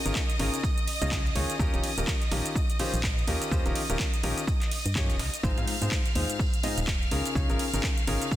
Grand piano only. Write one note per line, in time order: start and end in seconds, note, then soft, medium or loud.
0.06 0.20 C#3 medium
0.06 0.20 C#4 medium
0.06 0.20 D#4 medium
0.06 0.20 F4 medium
0.06 0.20 G#4 medium
0.06 0.20 A#4 loud
0.39 0.56 C#3 loud
0.39 0.56 C#4 medium
0.39 0.56 D#4 medium
0.39 0.56 F4 medium
0.39 0.56 G#4 medium
0.39 0.56 A#4 loud
1.02 1.16 C#3 loud
1.02 1.16 C#4 medium
1.02 1.16 D#4 medium
1.02 1.16 F4 medium
1.02 1.16 G#4 medium
1.02 1.16 D#5 loud
1.35 1.52 D#3 medium
1.35 1.52 C#4 medium
1.35 1.52 D#4 medium
1.35 1.52 F4 medium
1.35 1.52 G#4 medium
1.35 1.52 C#5 loud
1.59 1.71 D#3 loud
1.59 1.71 C#4 loud
1.59 1.72 D#4 medium
1.59 1.72 F4 medium
1.59 1.72 G4 medium
1.59 1.72 A#4 loud
1.74 1.88 D#3 medium
1.74 1.88 C#4 medium
1.74 1.88 D#4 medium
1.74 1.88 F4 medium
1.74 1.88 G4 medium
1.74 1.88 C#5 medium
1.98 2.12 D#3 medium
1.98 2.12 C#4 medium
1.98 2.12 D#4 medium
1.98 2.12 F4 medium
1.98 2.12 G4 medium
1.98 2.12 A#4 medium
2.31 2.56 D#3 medium
2.31 2.56 C#4 medium
2.31 2.56 D#4 medium
2.31 2.56 F4 medium
2.31 2.56 G4 medium
2.31 2.56 A#4 medium
2.79 2.96 D#3 medium
2.79 2.96 C#4 medium
2.79 2.96 D#4 medium
2.79 2.96 F4 medium
2.79 2.96 G4 medium
2.79 2.96 C5 loud
3.28 3.49 D#3 medium
3.28 3.49 C#4 medium
3.28 3.49 D#4 medium
3.28 3.49 F4 medium
3.28 3.49 G4 medium
3.28 3.49 A#4 medium
3.52 3.64 D#3 loud
3.52 3.64 C#4 medium
3.52 3.64 D#4 medium
3.52 3.64 F4 medium
3.52 3.64 G4 medium
3.52 3.64 C5 loud
3.66 3.80 D#3 loud
3.66 3.80 C#4 medium
3.66 3.80 D#4 medium
3.66 3.80 F4 medium
3.66 3.80 G4 medium
3.66 3.80 A#4 loud
3.90 4.04 D#3 medium
3.90 4.04 C#4 medium
3.90 4.04 D#4 medium
3.90 4.04 F4 medium
3.90 4.04 G4 medium
3.90 4.04 A#4 medium
4.23 4.40 D#3 loud
4.23 4.40 C#4 medium
4.23 4.40 D#4 medium
4.23 4.40 F4 medium
4.23 4.40 G4 medium
4.23 4.40 A#4 loud
4.95 5.12 D#3 medium
4.95 5.12 C#4 medium
4.95 5.12 D#4 medium
4.95 5.12 F4 medium
4.95 5.12 G4 medium
4.95 5.12 C#5 medium
5.43 5.55 G#2 loud
5.43 5.55 C4 medium
5.43 5.55 D#4 medium
5.43 5.55 F4 medium
5.43 5.55 G#4 medium
5.43 5.55 C5 loud
5.58 5.72 G#2 medium
5.58 5.72 C4 medium
5.58 5.72 D#4 medium
5.58 5.72 F4 medium
5.58 5.72 G#4 medium
5.58 5.72 F5 medium
5.82 5.96 G#2 medium
5.82 5.96 C4 medium
5.82 5.96 D#4 medium
5.82 5.96 F4 medium
5.82 5.96 G#4 medium
5.82 5.96 C5 medium
6.16 6.40 G#2 medium
6.16 6.40 C4 medium
6.16 6.40 D#4 medium
6.16 6.40 F4 medium
6.16 6.40 G#4 medium
6.16 6.40 C5 medium
6.63 6.80 G#2 medium
6.63 6.80 C4 medium
6.63 6.80 D#4 medium
6.63 6.80 F4 medium
6.63 6.80 G#4 medium
6.63 6.80 D#5 loud
7.11 7.33 C#3 medium
7.11 7.33 C#4 medium
7.11 7.33 D#4 medium
7.11 7.33 F4 medium
7.11 7.33 G#4 medium
7.11 7.33 A#4 medium
7.35 7.47 C#3 loud
7.35 7.47 C#4 medium
7.35 7.47 D#4 medium
7.35 7.47 F4 medium
7.35 7.47 G#4 medium
7.35 7.47 C#5 loud
7.50 7.64 C#3 loud
7.50 7.64 C#4 medium
7.50 7.64 D#4 medium
7.50 7.64 F4 medium
7.50 7.64 G#4 medium
7.50 7.64 A#4 loud
7.74 7.88 C#3 medium
7.74 7.88 C#4 medium
7.74 7.88 D#4 medium
7.74 7.88 F4 medium
7.74 7.88 G#4 medium
7.74 7.88 A#4 loud
8.07 8.24 C#3 loud
8.07 8.24 C#4 medium
8.07 8.24 D#4 medium
8.07 8.24 F4 medium
8.07 8.24 G#4 medium
8.07 8.24 A#4 loud